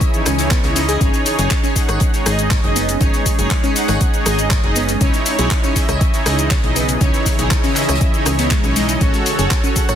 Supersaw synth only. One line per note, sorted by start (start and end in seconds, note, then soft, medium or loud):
0.00 0.11 E4 medium
0.00 0.11 D#5 medium
0.00 0.11 E5 medium
0.14 0.24 D#4 medium
0.14 0.24 E4 medium
0.14 0.24 C#5 medium
0.39 0.61 D#4 medium
0.39 0.61 E4 medium
0.39 0.61 C#5 medium
0.64 0.73 D#4 medium
0.64 0.73 E4 medium
0.64 0.73 C#5 loud
0.76 0.98 D#4 medium
0.76 0.98 E4 medium
0.76 0.98 D#5 medium
1.01 1.36 D#4 loud
1.01 1.36 G#4 medium
1.01 1.36 C#5 loud
1.39 1.73 D#4 loud
1.39 1.73 G#4 medium
1.39 1.73 C#5 loud
1.76 2.11 D#4 medium
1.76 2.11 G#4 medium
1.76 2.11 F#5 medium
2.14 2.24 D#4 medium
2.14 2.24 G#4 medium
2.14 2.24 C#5 medium
2.26 2.47 D#4 medium
2.26 2.47 G#4 medium
2.26 2.47 D#5 loud
2.64 2.76 D#4 medium
2.64 2.77 G#4 medium
2.64 2.76 D#5 loud
3.01 3.36 D#4 loud
3.01 3.36 G#4 medium
3.01 3.36 C#5 loud
3.39 3.73 D#4 loud
3.39 3.73 G#4 medium
3.39 3.73 C#5 loud
3.76 4.11 D#4 medium
3.76 4.11 G#4 medium
3.76 4.11 F#5 medium
4.14 4.24 D#4 medium
4.14 4.24 G#4 medium
4.14 4.24 C#5 medium
4.26 4.47 D#4 medium
4.26 4.47 G#4 medium
4.26 4.47 D#5 loud
4.64 4.76 D#4 medium
4.64 4.76 G#4 medium
4.64 4.76 D#5 loud
5.01 5.36 D#4 loud
5.01 5.36 E4 medium
5.01 5.36 C#5 loud
5.39 5.73 D#4 loud
5.39 5.73 E4 medium
5.39 5.73 C#5 loud
5.76 6.11 E4 medium
5.76 6.11 D#5 medium
5.76 6.11 E5 medium
6.14 6.24 D#4 medium
6.14 6.24 E4 medium
6.14 6.24 C#5 medium
6.26 6.47 D#4 medium
6.26 6.47 E4 medium
6.26 6.47 D#5 medium
6.64 6.76 D#4 medium
6.64 6.76 E4 medium
6.64 6.76 D#5 loud
7.01 7.36 D#4 loud
7.01 7.36 E4 medium
7.01 7.36 C#5 loud
7.39 7.73 D#4 loud
7.39 7.73 E4 medium
7.39 7.73 C#5 loud
7.76 8.11 E4 medium
7.76 8.11 D#5 medium
7.76 8.11 E5 medium
8.14 8.24 D#4 medium
8.14 8.24 E4 medium
8.14 8.24 C#5 medium
8.39 8.61 D#4 medium
8.39 8.61 E4 medium
8.39 8.61 C#5 medium
8.64 8.73 D#4 medium
8.64 8.73 E4 medium
8.64 8.73 C#5 loud
8.76 8.98 D#4 medium
8.76 8.98 E4 medium
8.76 8.98 D#5 medium
9.01 9.36 F#4 loud
9.01 9.36 A4 medium
9.01 9.36 C#5 loud
9.39 9.73 F#4 loud
9.39 9.73 A4 medium
9.39 9.73 C#5 loud
9.76 9.95 F#4 medium
9.76 9.95 A4 medium
9.76 9.95 F#5 medium